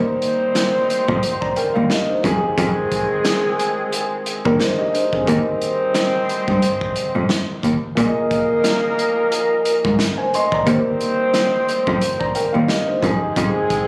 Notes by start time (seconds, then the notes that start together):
Already playing: D#3 G3 A#3 C4 D#4 G4 C5
0.22 closed hi-hat
0.55 snare, closed hi-hat
0.90 closed hi-hat
1.08 F2, kick
1.23 closed hi-hat
1.41 D5 A#5, kick
1.56 A#4 G5, closed hi-hat
1.74 D#2 F5
1.90 G4 D#5, snare, closed hi-hat
2.09 D#4 C5
2.22 F2 D#3 F3 G#3 C4 D#4 G4 G#4, kick, closed hi-hat
2.26 G#4
2.58 F2, kick, closed hi-hat
2.92 kick, closed hi-hat
3.25 snare, closed hi-hat
3.59 closed hi-hat
3.93 closed hi-hat
4.26 closed hi-hat
4.45 D#2 D4 A#4, kick
4.60 D#4 C5, snare, closed hi-hat
4.78 G4 D#5
4.94 D#4 C5, closed hi-hat
5.13 C4 G#4, kick
5.25 D#2 D#3 G3 C4 D#4 G4 C5, kick, closed hi-hat
5.30 D#5
5.62 closed hi-hat
5.94 snare, closed hi-hat
6.29 closed hi-hat
6.48 G2, kick
6.62 closed hi-hat
6.81 kick
6.96 closed hi-hat
7.15 F2
7.29 snare, closed hi-hat
7.63 D#2, kick, closed hi-hat
7.95 A#2 F3 A#3 D#4 G#4 A#4, kick, closed hi-hat
7.99 D5
8.06 D#5
8.31 kick, closed hi-hat
8.64 snare, closed hi-hat
8.99 closed hi-hat
9.32 closed hi-hat
9.65 closed hi-hat
9.85 G#2, kick
9.99 snare, closed hi-hat
10.18 C5 G#5
10.34 D#5 C6, closed hi-hat
10.52 D5 A#5, kick
10.64 D#2 D#3 G3 A#3 C4 D#4 G4 C5, kick, closed hi-hat
10.68 C5
11.01 closed hi-hat
11.34 snare, closed hi-hat
11.69 closed hi-hat
11.87 F2, kick
12.01 closed hi-hat
12.19 D5 A#5, kick
12.35 A#4 G5, closed hi-hat
12.52 D#2 F5
12.68 G4 D#5, snare, closed hi-hat
12.88 D#4 C5
13.01 F2 D#3 F3 G#3 C4 D#4 G4 G#4, kick, closed hi-hat
13.05 G#4
13.36 F2, kick, closed hi-hat
13.70 kick, closed hi-hat